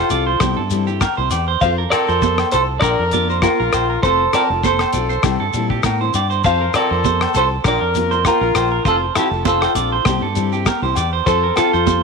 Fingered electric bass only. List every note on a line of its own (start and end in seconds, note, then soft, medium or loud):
0.11 0.35 C2 medium
0.40 0.54 C2 medium
0.58 1.05 G2 medium
1.18 1.29 C2 medium
1.32 1.56 E2 medium
1.61 1.85 F2 medium
2.09 2.43 F2 medium
2.54 2.77 C2 medium
2.82 2.95 A#1 loud
2.99 3.46 F2 medium
3.60 3.71 A#1 medium
3.73 3.97 A#1 medium
4.03 4.27 F1 medium
4.50 4.84 F1 medium
4.93 5.17 B1 medium
5.23 5.36 C2 medium
5.40 5.51 G2 medium
5.54 5.81 A#2 medium
5.84 6.11 A2 medium
6.14 6.41 G2 medium
6.45 6.68 F2 medium
6.91 7.25 F2 medium
7.34 7.58 C2 medium
7.65 7.77 A#1 medium
7.81 8.28 F2 medium
8.41 8.52 A#1 medium
8.55 8.78 A#1 medium
8.85 9.09 F1 medium
9.31 9.66 F1 medium
9.75 9.99 A#1 medium
10.05 10.18 C2 medium
10.21 10.69 G2 medium
10.82 10.93 C2 medium
10.96 11.20 E2 medium
11.27 11.50 F2 loud
11.74 12.03 F2 medium